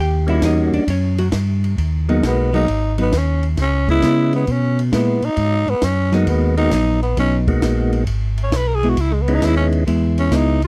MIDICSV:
0, 0, Header, 1, 6, 480
1, 0, Start_track
1, 0, Key_signature, 5, "minor"
1, 0, Tempo, 449438
1, 1897, Time_signature, 4, 2, 24, 8
1, 11396, End_track
2, 0, Start_track
2, 0, Title_t, "Tenor saxophone"
2, 0, Program_c, 0, 66
2, 2425, Note_on_c, 0, 59, 88
2, 2706, Note_off_c, 0, 59, 0
2, 2721, Note_on_c, 0, 63, 98
2, 3159, Note_off_c, 0, 63, 0
2, 3220, Note_on_c, 0, 59, 96
2, 3395, Note_on_c, 0, 61, 84
2, 3412, Note_off_c, 0, 59, 0
2, 3693, Note_off_c, 0, 61, 0
2, 3861, Note_on_c, 0, 61, 88
2, 4144, Note_off_c, 0, 61, 0
2, 4172, Note_on_c, 0, 64, 104
2, 4606, Note_off_c, 0, 64, 0
2, 4652, Note_on_c, 0, 59, 86
2, 4823, Note_on_c, 0, 61, 87
2, 4839, Note_off_c, 0, 59, 0
2, 5127, Note_off_c, 0, 61, 0
2, 5284, Note_on_c, 0, 59, 92
2, 5606, Note_on_c, 0, 63, 118
2, 5622, Note_off_c, 0, 59, 0
2, 6083, Note_on_c, 0, 59, 100
2, 6099, Note_off_c, 0, 63, 0
2, 6244, Note_on_c, 0, 61, 103
2, 6260, Note_off_c, 0, 59, 0
2, 6557, Note_off_c, 0, 61, 0
2, 6722, Note_on_c, 0, 59, 72
2, 7014, Note_off_c, 0, 59, 0
2, 7022, Note_on_c, 0, 63, 104
2, 7469, Note_off_c, 0, 63, 0
2, 7504, Note_on_c, 0, 59, 84
2, 7647, Note_off_c, 0, 59, 0
2, 7684, Note_on_c, 0, 61, 91
2, 7872, Note_off_c, 0, 61, 0
2, 9008, Note_on_c, 0, 73, 84
2, 9151, Note_on_c, 0, 71, 93
2, 9167, Note_off_c, 0, 73, 0
2, 9263, Note_on_c, 0, 70, 81
2, 9279, Note_off_c, 0, 71, 0
2, 9348, Note_on_c, 0, 68, 95
2, 9364, Note_off_c, 0, 70, 0
2, 9498, Note_on_c, 0, 66, 80
2, 9514, Note_off_c, 0, 68, 0
2, 9621, Note_on_c, 0, 64, 88
2, 9637, Note_off_c, 0, 66, 0
2, 9750, Note_on_c, 0, 56, 61
2, 9766, Note_off_c, 0, 64, 0
2, 9845, Note_on_c, 0, 59, 93
2, 9861, Note_off_c, 0, 56, 0
2, 9982, Note_on_c, 0, 63, 88
2, 9998, Note_off_c, 0, 59, 0
2, 10097, Note_on_c, 0, 64, 94
2, 10113, Note_off_c, 0, 63, 0
2, 10211, Note_off_c, 0, 64, 0
2, 10217, Note_on_c, 0, 61, 83
2, 10316, Note_off_c, 0, 61, 0
2, 10887, Note_on_c, 0, 61, 93
2, 11062, Note_on_c, 0, 63, 98
2, 11078, Note_off_c, 0, 61, 0
2, 11362, Note_off_c, 0, 63, 0
2, 11396, End_track
3, 0, Start_track
3, 0, Title_t, "Hollow-body jazz guitar"
3, 0, Program_c, 1, 26
3, 3, Note_on_c, 1, 67, 77
3, 5, Note_on_c, 1, 79, 92
3, 305, Note_off_c, 1, 79, 0
3, 307, Note_off_c, 1, 67, 0
3, 314, Note_on_c, 1, 76, 93
3, 323, Note_on_c, 1, 64, 83
3, 457, Note_off_c, 1, 76, 0
3, 462, Note_off_c, 1, 64, 0
3, 482, Note_on_c, 1, 63, 75
3, 483, Note_on_c, 1, 75, 79
3, 783, Note_off_c, 1, 63, 0
3, 785, Note_off_c, 1, 75, 0
3, 787, Note_on_c, 1, 62, 85
3, 791, Note_on_c, 1, 74, 81
3, 934, Note_off_c, 1, 74, 0
3, 935, Note_off_c, 1, 62, 0
3, 962, Note_on_c, 1, 61, 73
3, 963, Note_on_c, 1, 73, 83
3, 1265, Note_off_c, 1, 73, 0
3, 1267, Note_off_c, 1, 61, 0
3, 1267, Note_on_c, 1, 66, 97
3, 1272, Note_on_c, 1, 54, 79
3, 1358, Note_off_c, 1, 66, 0
3, 1361, Note_off_c, 1, 54, 0
3, 2227, Note_on_c, 1, 54, 64
3, 2231, Note_on_c, 1, 59, 71
3, 2239, Note_on_c, 1, 63, 72
3, 2364, Note_off_c, 1, 54, 0
3, 2366, Note_off_c, 1, 59, 0
3, 2370, Note_off_c, 1, 63, 0
3, 2700, Note_on_c, 1, 59, 65
3, 2701, Note_on_c, 1, 54, 71
3, 2708, Note_on_c, 1, 63, 74
3, 2840, Note_off_c, 1, 59, 0
3, 2841, Note_off_c, 1, 54, 0
3, 2844, Note_off_c, 1, 63, 0
3, 3183, Note_on_c, 1, 54, 61
3, 3188, Note_on_c, 1, 63, 76
3, 3190, Note_on_c, 1, 59, 65
3, 3322, Note_off_c, 1, 54, 0
3, 3324, Note_off_c, 1, 63, 0
3, 3325, Note_off_c, 1, 59, 0
3, 4306, Note_on_c, 1, 56, 65
3, 4311, Note_on_c, 1, 59, 61
3, 4320, Note_on_c, 1, 64, 67
3, 4595, Note_off_c, 1, 56, 0
3, 4598, Note_off_c, 1, 59, 0
3, 4602, Note_off_c, 1, 64, 0
3, 5256, Note_on_c, 1, 56, 64
3, 5266, Note_on_c, 1, 64, 80
3, 5267, Note_on_c, 1, 59, 69
3, 5550, Note_off_c, 1, 56, 0
3, 5556, Note_off_c, 1, 59, 0
3, 5556, Note_off_c, 1, 64, 0
3, 6538, Note_on_c, 1, 54, 70
3, 6546, Note_on_c, 1, 59, 70
3, 6550, Note_on_c, 1, 63, 85
3, 6679, Note_off_c, 1, 54, 0
3, 6684, Note_off_c, 1, 59, 0
3, 6685, Note_off_c, 1, 63, 0
3, 7180, Note_on_c, 1, 54, 65
3, 7192, Note_on_c, 1, 59, 65
3, 7198, Note_on_c, 1, 63, 67
3, 7472, Note_off_c, 1, 54, 0
3, 7478, Note_off_c, 1, 59, 0
3, 7481, Note_off_c, 1, 63, 0
3, 7662, Note_on_c, 1, 54, 64
3, 7671, Note_on_c, 1, 59, 64
3, 7677, Note_on_c, 1, 63, 64
3, 7953, Note_off_c, 1, 54, 0
3, 7958, Note_off_c, 1, 59, 0
3, 7960, Note_off_c, 1, 63, 0
3, 9433, Note_on_c, 1, 56, 65
3, 9440, Note_on_c, 1, 59, 74
3, 9449, Note_on_c, 1, 64, 65
3, 9566, Note_off_c, 1, 56, 0
3, 9570, Note_off_c, 1, 59, 0
3, 9574, Note_off_c, 1, 64, 0
3, 10541, Note_on_c, 1, 56, 61
3, 10544, Note_on_c, 1, 59, 65
3, 10553, Note_on_c, 1, 64, 68
3, 11003, Note_off_c, 1, 56, 0
3, 11004, Note_off_c, 1, 59, 0
3, 11009, Note_off_c, 1, 64, 0
3, 11024, Note_on_c, 1, 56, 67
3, 11026, Note_on_c, 1, 59, 79
3, 11031, Note_on_c, 1, 64, 74
3, 11313, Note_off_c, 1, 56, 0
3, 11314, Note_off_c, 1, 59, 0
3, 11317, Note_off_c, 1, 64, 0
3, 11396, End_track
4, 0, Start_track
4, 0, Title_t, "Tonewheel organ"
4, 0, Program_c, 2, 16
4, 285, Note_on_c, 2, 58, 65
4, 288, Note_on_c, 2, 55, 68
4, 292, Note_on_c, 2, 61, 66
4, 299, Note_on_c, 2, 63, 58
4, 299, Note_on_c, 2, 66, 73
4, 897, Note_off_c, 2, 58, 0
4, 899, Note_off_c, 2, 55, 0
4, 900, Note_off_c, 2, 61, 0
4, 904, Note_off_c, 2, 63, 0
4, 904, Note_off_c, 2, 66, 0
4, 2228, Note_on_c, 2, 58, 55
4, 2230, Note_on_c, 2, 56, 63
4, 2235, Note_on_c, 2, 59, 51
4, 2236, Note_on_c, 2, 63, 52
4, 2240, Note_on_c, 2, 66, 73
4, 2673, Note_off_c, 2, 58, 0
4, 2674, Note_off_c, 2, 56, 0
4, 2677, Note_off_c, 2, 59, 0
4, 2677, Note_off_c, 2, 63, 0
4, 2679, Note_off_c, 2, 66, 0
4, 2705, Note_on_c, 2, 56, 74
4, 2706, Note_on_c, 2, 58, 61
4, 2712, Note_on_c, 2, 59, 65
4, 2713, Note_on_c, 2, 66, 71
4, 2717, Note_on_c, 2, 63, 62
4, 2843, Note_off_c, 2, 56, 0
4, 2843, Note_off_c, 2, 58, 0
4, 2846, Note_off_c, 2, 59, 0
4, 2847, Note_off_c, 2, 66, 0
4, 2849, Note_off_c, 2, 63, 0
4, 4152, Note_on_c, 2, 56, 65
4, 4160, Note_on_c, 2, 59, 54
4, 4162, Note_on_c, 2, 64, 59
4, 4163, Note_on_c, 2, 61, 53
4, 4164, Note_on_c, 2, 75, 55
4, 4751, Note_off_c, 2, 56, 0
4, 4755, Note_off_c, 2, 59, 0
4, 4756, Note_off_c, 2, 64, 0
4, 4757, Note_off_c, 2, 61, 0
4, 4757, Note_off_c, 2, 75, 0
4, 6554, Note_on_c, 2, 56, 66
4, 6555, Note_on_c, 2, 63, 65
4, 6555, Note_on_c, 2, 66, 70
4, 6556, Note_on_c, 2, 58, 65
4, 6559, Note_on_c, 2, 59, 65
4, 6996, Note_off_c, 2, 56, 0
4, 6997, Note_off_c, 2, 58, 0
4, 6997, Note_off_c, 2, 63, 0
4, 6997, Note_off_c, 2, 66, 0
4, 6999, Note_off_c, 2, 59, 0
4, 7017, Note_on_c, 2, 56, 73
4, 7020, Note_on_c, 2, 58, 60
4, 7020, Note_on_c, 2, 63, 64
4, 7026, Note_on_c, 2, 66, 82
4, 7029, Note_on_c, 2, 59, 66
4, 7159, Note_off_c, 2, 56, 0
4, 7160, Note_off_c, 2, 58, 0
4, 7160, Note_off_c, 2, 63, 0
4, 7163, Note_off_c, 2, 66, 0
4, 7165, Note_off_c, 2, 59, 0
4, 7983, Note_on_c, 2, 56, 67
4, 7988, Note_on_c, 2, 58, 62
4, 7992, Note_on_c, 2, 63, 60
4, 7993, Note_on_c, 2, 59, 58
4, 7994, Note_on_c, 2, 66, 72
4, 8586, Note_off_c, 2, 56, 0
4, 8589, Note_off_c, 2, 58, 0
4, 8590, Note_off_c, 2, 63, 0
4, 8591, Note_off_c, 2, 59, 0
4, 8592, Note_off_c, 2, 66, 0
4, 9911, Note_on_c, 2, 59, 60
4, 9912, Note_on_c, 2, 63, 63
4, 9914, Note_on_c, 2, 56, 73
4, 9915, Note_on_c, 2, 64, 80
4, 9916, Note_on_c, 2, 61, 56
4, 10510, Note_off_c, 2, 59, 0
4, 10510, Note_off_c, 2, 63, 0
4, 10511, Note_off_c, 2, 56, 0
4, 10512, Note_off_c, 2, 61, 0
4, 10512, Note_off_c, 2, 64, 0
4, 11396, End_track
5, 0, Start_track
5, 0, Title_t, "Tonewheel organ"
5, 0, Program_c, 3, 16
5, 0, Note_on_c, 3, 39, 88
5, 436, Note_off_c, 3, 39, 0
5, 447, Note_on_c, 3, 40, 98
5, 755, Note_off_c, 3, 40, 0
5, 773, Note_on_c, 3, 40, 41
5, 853, Note_off_c, 3, 40, 0
5, 932, Note_on_c, 3, 42, 93
5, 1400, Note_off_c, 3, 42, 0
5, 1411, Note_on_c, 3, 43, 95
5, 1880, Note_off_c, 3, 43, 0
5, 1905, Note_on_c, 3, 39, 78
5, 2367, Note_off_c, 3, 39, 0
5, 2380, Note_on_c, 3, 35, 91
5, 2844, Note_off_c, 3, 35, 0
5, 2860, Note_on_c, 3, 32, 84
5, 3325, Note_off_c, 3, 32, 0
5, 3336, Note_on_c, 3, 39, 89
5, 3803, Note_off_c, 3, 39, 0
5, 3820, Note_on_c, 3, 37, 79
5, 4285, Note_off_c, 3, 37, 0
5, 4297, Note_on_c, 3, 49, 96
5, 4763, Note_off_c, 3, 49, 0
5, 4785, Note_on_c, 3, 47, 100
5, 5247, Note_off_c, 3, 47, 0
5, 5263, Note_on_c, 3, 46, 93
5, 5564, Note_off_c, 3, 46, 0
5, 5577, Note_on_c, 3, 46, 39
5, 5656, Note_off_c, 3, 46, 0
5, 5736, Note_on_c, 3, 44, 85
5, 6040, Note_off_c, 3, 44, 0
5, 6061, Note_on_c, 3, 44, 42
5, 6138, Note_off_c, 3, 44, 0
5, 6217, Note_on_c, 3, 42, 88
5, 6683, Note_off_c, 3, 42, 0
5, 6692, Note_on_c, 3, 39, 97
5, 7160, Note_off_c, 3, 39, 0
5, 7174, Note_on_c, 3, 34, 83
5, 7641, Note_off_c, 3, 34, 0
5, 7657, Note_on_c, 3, 35, 83
5, 8123, Note_off_c, 3, 35, 0
5, 8140, Note_on_c, 3, 34, 92
5, 8604, Note_off_c, 3, 34, 0
5, 8618, Note_on_c, 3, 32, 88
5, 9083, Note_off_c, 3, 32, 0
5, 9095, Note_on_c, 3, 35, 80
5, 9561, Note_off_c, 3, 35, 0
5, 9580, Note_on_c, 3, 37, 90
5, 10044, Note_off_c, 3, 37, 0
5, 10058, Note_on_c, 3, 39, 98
5, 10522, Note_off_c, 3, 39, 0
5, 10542, Note_on_c, 3, 40, 92
5, 11005, Note_off_c, 3, 40, 0
5, 11019, Note_on_c, 3, 37, 87
5, 11396, Note_off_c, 3, 37, 0
5, 11396, End_track
6, 0, Start_track
6, 0, Title_t, "Drums"
6, 295, Note_on_c, 9, 51, 47
6, 402, Note_off_c, 9, 51, 0
6, 448, Note_on_c, 9, 36, 22
6, 448, Note_on_c, 9, 38, 69
6, 448, Note_on_c, 9, 44, 71
6, 448, Note_on_c, 9, 51, 78
6, 555, Note_off_c, 9, 36, 0
6, 555, Note_off_c, 9, 38, 0
6, 555, Note_off_c, 9, 44, 0
6, 555, Note_off_c, 9, 51, 0
6, 784, Note_on_c, 9, 51, 52
6, 891, Note_off_c, 9, 51, 0
6, 932, Note_on_c, 9, 36, 20
6, 938, Note_on_c, 9, 51, 77
6, 1039, Note_off_c, 9, 36, 0
6, 1045, Note_off_c, 9, 51, 0
6, 1264, Note_on_c, 9, 51, 61
6, 1371, Note_off_c, 9, 51, 0
6, 1410, Note_on_c, 9, 38, 73
6, 1410, Note_on_c, 9, 44, 64
6, 1410, Note_on_c, 9, 51, 77
6, 1413, Note_on_c, 9, 36, 22
6, 1516, Note_off_c, 9, 38, 0
6, 1516, Note_off_c, 9, 44, 0
6, 1516, Note_off_c, 9, 51, 0
6, 1520, Note_off_c, 9, 36, 0
6, 1751, Note_on_c, 9, 51, 53
6, 1857, Note_off_c, 9, 51, 0
6, 1899, Note_on_c, 9, 36, 26
6, 1903, Note_on_c, 9, 51, 58
6, 2006, Note_off_c, 9, 36, 0
6, 2010, Note_off_c, 9, 51, 0
6, 2231, Note_on_c, 9, 51, 41
6, 2338, Note_off_c, 9, 51, 0
6, 2380, Note_on_c, 9, 36, 20
6, 2384, Note_on_c, 9, 38, 68
6, 2384, Note_on_c, 9, 44, 53
6, 2384, Note_on_c, 9, 51, 71
6, 2487, Note_off_c, 9, 36, 0
6, 2491, Note_off_c, 9, 38, 0
6, 2491, Note_off_c, 9, 44, 0
6, 2491, Note_off_c, 9, 51, 0
6, 2711, Note_on_c, 9, 51, 49
6, 2817, Note_off_c, 9, 51, 0
6, 2861, Note_on_c, 9, 36, 17
6, 2863, Note_on_c, 9, 51, 53
6, 2968, Note_off_c, 9, 36, 0
6, 2970, Note_off_c, 9, 51, 0
6, 3182, Note_on_c, 9, 51, 53
6, 3289, Note_off_c, 9, 51, 0
6, 3337, Note_on_c, 9, 38, 65
6, 3337, Note_on_c, 9, 44, 60
6, 3337, Note_on_c, 9, 51, 72
6, 3339, Note_on_c, 9, 36, 22
6, 3444, Note_off_c, 9, 38, 0
6, 3444, Note_off_c, 9, 44, 0
6, 3444, Note_off_c, 9, 51, 0
6, 3446, Note_off_c, 9, 36, 0
6, 3661, Note_on_c, 9, 51, 48
6, 3768, Note_off_c, 9, 51, 0
6, 3816, Note_on_c, 9, 38, 36
6, 3816, Note_on_c, 9, 51, 62
6, 3819, Note_on_c, 9, 36, 18
6, 3923, Note_off_c, 9, 38, 0
6, 3923, Note_off_c, 9, 51, 0
6, 3926, Note_off_c, 9, 36, 0
6, 4147, Note_on_c, 9, 36, 49
6, 4150, Note_on_c, 9, 51, 48
6, 4254, Note_off_c, 9, 36, 0
6, 4257, Note_off_c, 9, 51, 0
6, 4297, Note_on_c, 9, 38, 67
6, 4297, Note_on_c, 9, 44, 52
6, 4297, Note_on_c, 9, 51, 68
6, 4300, Note_on_c, 9, 36, 27
6, 4403, Note_off_c, 9, 38, 0
6, 4403, Note_off_c, 9, 44, 0
6, 4403, Note_off_c, 9, 51, 0
6, 4406, Note_off_c, 9, 36, 0
6, 4622, Note_on_c, 9, 51, 47
6, 4729, Note_off_c, 9, 51, 0
6, 4776, Note_on_c, 9, 51, 55
6, 4780, Note_on_c, 9, 36, 23
6, 4883, Note_off_c, 9, 51, 0
6, 4886, Note_off_c, 9, 36, 0
6, 5114, Note_on_c, 9, 51, 54
6, 5220, Note_off_c, 9, 51, 0
6, 5259, Note_on_c, 9, 36, 23
6, 5261, Note_on_c, 9, 38, 74
6, 5261, Note_on_c, 9, 44, 53
6, 5261, Note_on_c, 9, 51, 69
6, 5366, Note_off_c, 9, 36, 0
6, 5368, Note_off_c, 9, 38, 0
6, 5368, Note_off_c, 9, 44, 0
6, 5368, Note_off_c, 9, 51, 0
6, 5579, Note_on_c, 9, 51, 52
6, 5686, Note_off_c, 9, 51, 0
6, 5732, Note_on_c, 9, 51, 63
6, 5736, Note_on_c, 9, 36, 26
6, 5839, Note_off_c, 9, 51, 0
6, 5843, Note_off_c, 9, 36, 0
6, 6063, Note_on_c, 9, 51, 40
6, 6169, Note_off_c, 9, 51, 0
6, 6213, Note_on_c, 9, 38, 77
6, 6213, Note_on_c, 9, 44, 65
6, 6213, Note_on_c, 9, 51, 77
6, 6215, Note_on_c, 9, 36, 26
6, 6319, Note_off_c, 9, 38, 0
6, 6319, Note_off_c, 9, 44, 0
6, 6319, Note_off_c, 9, 51, 0
6, 6322, Note_off_c, 9, 36, 0
6, 6541, Note_on_c, 9, 38, 43
6, 6541, Note_on_c, 9, 51, 47
6, 6648, Note_off_c, 9, 38, 0
6, 6648, Note_off_c, 9, 51, 0
6, 6694, Note_on_c, 9, 36, 22
6, 6695, Note_on_c, 9, 51, 66
6, 6801, Note_off_c, 9, 36, 0
6, 6802, Note_off_c, 9, 51, 0
6, 7021, Note_on_c, 9, 51, 54
6, 7128, Note_off_c, 9, 51, 0
6, 7169, Note_on_c, 9, 38, 72
6, 7169, Note_on_c, 9, 44, 72
6, 7169, Note_on_c, 9, 51, 77
6, 7174, Note_on_c, 9, 36, 26
6, 7276, Note_off_c, 9, 38, 0
6, 7276, Note_off_c, 9, 44, 0
6, 7276, Note_off_c, 9, 51, 0
6, 7281, Note_off_c, 9, 36, 0
6, 7505, Note_on_c, 9, 51, 43
6, 7612, Note_off_c, 9, 51, 0
6, 7657, Note_on_c, 9, 36, 23
6, 7659, Note_on_c, 9, 51, 67
6, 7764, Note_off_c, 9, 36, 0
6, 7766, Note_off_c, 9, 51, 0
6, 7983, Note_on_c, 9, 36, 53
6, 7985, Note_on_c, 9, 51, 47
6, 8090, Note_off_c, 9, 36, 0
6, 8092, Note_off_c, 9, 51, 0
6, 8138, Note_on_c, 9, 36, 21
6, 8139, Note_on_c, 9, 38, 70
6, 8139, Note_on_c, 9, 44, 62
6, 8139, Note_on_c, 9, 51, 78
6, 8245, Note_off_c, 9, 36, 0
6, 8246, Note_off_c, 9, 38, 0
6, 8246, Note_off_c, 9, 44, 0
6, 8246, Note_off_c, 9, 51, 0
6, 8465, Note_on_c, 9, 51, 50
6, 8572, Note_off_c, 9, 51, 0
6, 8617, Note_on_c, 9, 36, 22
6, 8617, Note_on_c, 9, 51, 62
6, 8724, Note_off_c, 9, 36, 0
6, 8724, Note_off_c, 9, 51, 0
6, 8945, Note_on_c, 9, 51, 53
6, 9052, Note_off_c, 9, 51, 0
6, 9098, Note_on_c, 9, 36, 23
6, 9101, Note_on_c, 9, 38, 76
6, 9101, Note_on_c, 9, 44, 62
6, 9101, Note_on_c, 9, 51, 72
6, 9205, Note_off_c, 9, 36, 0
6, 9208, Note_off_c, 9, 38, 0
6, 9208, Note_off_c, 9, 44, 0
6, 9208, Note_off_c, 9, 51, 0
6, 9431, Note_on_c, 9, 51, 46
6, 9538, Note_off_c, 9, 51, 0
6, 9579, Note_on_c, 9, 36, 19
6, 9580, Note_on_c, 9, 51, 66
6, 9686, Note_off_c, 9, 36, 0
6, 9687, Note_off_c, 9, 51, 0
6, 9909, Note_on_c, 9, 51, 50
6, 10015, Note_off_c, 9, 51, 0
6, 10059, Note_on_c, 9, 36, 27
6, 10060, Note_on_c, 9, 38, 70
6, 10060, Note_on_c, 9, 44, 49
6, 10060, Note_on_c, 9, 51, 80
6, 10166, Note_off_c, 9, 36, 0
6, 10167, Note_off_c, 9, 38, 0
6, 10167, Note_off_c, 9, 44, 0
6, 10167, Note_off_c, 9, 51, 0
6, 10386, Note_on_c, 9, 51, 48
6, 10493, Note_off_c, 9, 51, 0
6, 10540, Note_on_c, 9, 36, 21
6, 10547, Note_on_c, 9, 51, 64
6, 10647, Note_off_c, 9, 36, 0
6, 10653, Note_off_c, 9, 51, 0
6, 10869, Note_on_c, 9, 51, 57
6, 10976, Note_off_c, 9, 51, 0
6, 11018, Note_on_c, 9, 36, 27
6, 11019, Note_on_c, 9, 38, 66
6, 11019, Note_on_c, 9, 44, 64
6, 11019, Note_on_c, 9, 51, 73
6, 11125, Note_off_c, 9, 36, 0
6, 11126, Note_off_c, 9, 38, 0
6, 11126, Note_off_c, 9, 44, 0
6, 11126, Note_off_c, 9, 51, 0
6, 11345, Note_on_c, 9, 51, 50
6, 11396, Note_off_c, 9, 51, 0
6, 11396, End_track
0, 0, End_of_file